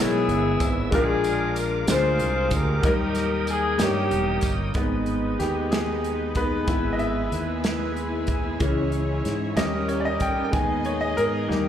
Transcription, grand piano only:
0.00 0.94 G#2 medium
0.00 0.91 G#3 medium
0.00 0.94 B3 medium
0.00 0.95 E4 medium
0.00 0.95 G#4 medium
0.00 0.61 C#5 medium
0.91 1.84 A#2 medium
0.91 1.55 G#3 medium
0.91 1.56 D4 medium
0.91 1.56 F4 medium
0.91 1.57 A#4 medium
1.87 2.51 G#3 medium
1.87 2.52 D4 medium
1.87 2.52 F4 medium
1.87 2.52 C5 medium
2.82 3.76 D#3 medium
2.82 2.89 F#3 medium
2.82 3.47 A#3 medium
2.82 3.48 D#4 medium
2.82 3.48 A#4 medium
2.88 3.49 G3 medium
3.77 4.42 G3 medium
3.77 4.43 A#3 medium
3.77 4.43 D#4 medium
3.77 4.44 C#5 medium
4.75 5.18 D#3 soft
4.75 5.18 G#3 soft
4.75 5.18 B3 soft
5.39 5.73 G4 medium
5.71 6.38 G#4 medium
6.36 6.65 D#3 soft
6.36 6.65 G#3 soft
6.36 6.65 B3 soft
6.36 6.95 B4 medium
6.68 8.57 G#3 soft
6.68 8.57 B3 medium
6.68 8.56 E4 soft
6.93 7.00 D#5 medium
6.99 8.56 E5 medium
8.60 9.03 E3 soft
8.60 9.03 G#3 soft
8.60 9.03 C#4 medium
9.57 10.49 G3 medium
9.57 10.49 A#3 soft
9.57 10.49 C#4 medium
9.57 9.90 D#5 medium
9.88 10.01 C#5 medium
10.00 10.05 D5 medium
10.05 10.22 D#5 medium
10.22 10.43 G5 medium
10.44 10.52 G5 medium
10.51 11.44 G#3 soft
10.51 11.45 B3 soft
10.51 11.45 D#4 medium
10.51 10.86 G#5 medium
10.86 11.00 C#5 medium
11.01 11.18 D#5 medium
11.17 11.69 A#4 medium
11.48 11.69 G3 medium
11.48 11.69 A#3 soft
11.48 11.69 D#4 medium

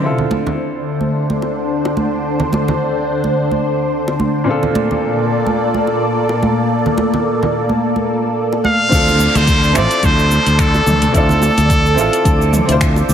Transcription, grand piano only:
0.00 4.43 D3 medium
0.00 4.44 C4 medium
0.00 4.45 E4 medium
0.05 4.45 F4 medium
0.05 4.46 A4 medium
4.44 8.87 A#2 medium
4.44 8.87 C4 medium
4.44 8.89 D4 medium
4.49 8.90 F4 medium
4.49 8.91 A4 medium
8.89 9.70 C4 medium
8.89 9.72 D4 medium
8.93 9.73 F4 medium
8.93 9.74 A4 medium
9.72 11.10 C4 medium
9.72 11.11 E4 medium
9.76 11.12 F4 medium
9.76 11.13 C5 medium
11.11 11.93 C4 medium
11.11 11.94 E4 medium
11.15 11.95 F4 medium
11.15 11.96 D5 medium
11.94 12.64 C4 medium
11.94 12.65 E4 medium
11.99 12.66 F4 medium
11.99 12.67 A4 loud
12.65 13.14 C4 medium
12.65 13.14 E4 medium
12.70 13.14 F4 medium
12.70 13.14 C5 medium

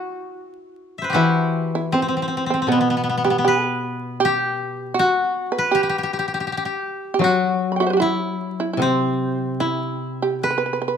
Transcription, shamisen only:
0.00 0.74 F#4 medium
1.16 1.69 E4 medium
1.75 1.92 E4 medium
1.94 2.46 C4 medium
2.50 2.67 C4 medium
2.68 3.21 B3 medium
3.25 3.42 G4 medium
3.45 3.69 G4 medium
3.69 4.16 B4 medium
4.20 4.91 G4 medium
4.94 5.47 F#4 medium
5.52 5.69 B4 medium
5.71 6.80 G4 medium
7.14 7.21 G4 medium
7.21 7.71 F#4 medium
7.72 7.76 B5 soft
7.76 7.90 F#4 medium
7.76 7.81 G5 soft
7.81 7.86 E5 soft
7.81 7.94 F#5 soft
7.86 7.93 B4 soft
7.86 7.96 C5 soft
7.93 8.10 F#4 soft
7.93 7.99 G4 soft
8.00 8.55 E4 medium
8.60 8.71 E4 medium
8.73 8.79 E4 soft
8.80 9.56 C4 medium
9.60 10.17 E4 medium
10.22 10.40 G4 medium
10.44 10.49 B4 medium
10.51 10.57 B4 soft
10.58 10.64 B4 medium
10.66 10.72 B4 soft
10.73 10.79 B4 soft
10.82 10.87 B4 soft
10.88 10.94 B4 medium

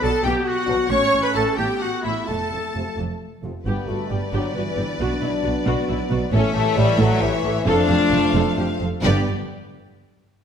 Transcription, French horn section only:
0.02 0.10 B3 medium
0.02 0.09 D4 medium
0.66 0.74 B3 medium
0.66 0.74 D4 medium
1.33 1.42 C#4 medium
1.33 1.42 E4 medium
2.04 2.12 C#4 medium
2.04 2.13 E4 soft
2.73 2.82 C4 soft
2.73 2.82 F4 soft
3.43 3.51 C4 soft
3.43 3.51 F4 soft
3.65 3.86 B3 medium
3.87 4.10 A3 medium
4.08 4.32 G3 medium
4.33 4.55 F#3 medium
4.55 5.00 E3 medium
5.00 6.08 D4 medium
6.33 6.53 C#4 loud
6.53 6.76 A3 loud
6.76 6.98 G3 loud
6.99 7.20 F#3 loud
7.20 7.66 E3 loud
7.66 8.80 D4 loud
9.02 9.21 G4 loud

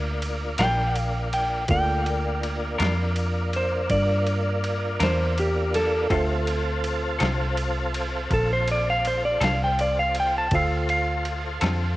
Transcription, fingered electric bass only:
0.00 0.56 D2 medium
0.59 1.66 A#1 loud
1.70 2.77 D2 medium
2.80 3.87 F2 loud
3.90 4.97 G2 medium
5.00 6.07 E2 loud
6.11 7.18 D2 medium
7.21 8.28 C2 loud
8.31 9.38 A#1 loud
9.41 10.48 C2 loud
10.51 11.59 D2 medium
11.62 11.97 F2 loud

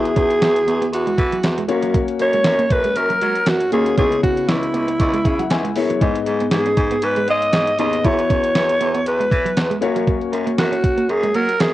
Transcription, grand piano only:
0.00 0.63 E3 medium
0.00 0.87 B3 medium
0.00 0.87 E4 medium
0.00 0.87 F#4 medium
0.00 0.88 E5 medium
1.68 2.65 A#3 medium
1.68 2.65 C#4 medium
1.68 2.65 F#4 medium
1.68 2.65 C#5 medium
3.72 3.96 A#3 medium
3.72 3.96 C#4 medium
3.72 3.96 F#4 medium
3.72 3.97 C#5 medium
3.97 4.70 C#3 medium
3.97 4.94 B3 medium
3.97 4.94 E4 medium
3.97 4.94 G#4 medium
3.97 4.94 C#5 medium
5.25 5.38 E5 medium
5.39 5.49 F#5 medium
5.51 5.98 G#5 medium
5.76 5.99 B3 medium
5.76 6.00 E4 medium
5.76 6.00 G#4 medium
5.76 6.00 C#5 medium
6.01 6.74 G#2 medium
6.01 6.97 B3 medium
6.01 6.98 D#4 medium
6.01 6.98 G#4 medium
6.01 6.98 D#5 medium
7.79 8.02 B3 medium
7.79 8.03 D#4 medium
7.79 8.03 G#4 medium
7.79 8.03 D#5 medium
8.04 8.77 E3 medium
8.04 9.01 B3 medium
8.04 9.01 E4 medium
8.04 9.01 F#4 medium
8.04 9.01 E5 medium
9.81 10.78 A#3 medium
9.81 10.78 C#4 medium
9.81 10.79 F#4 medium
9.81 10.79 C#5 loud

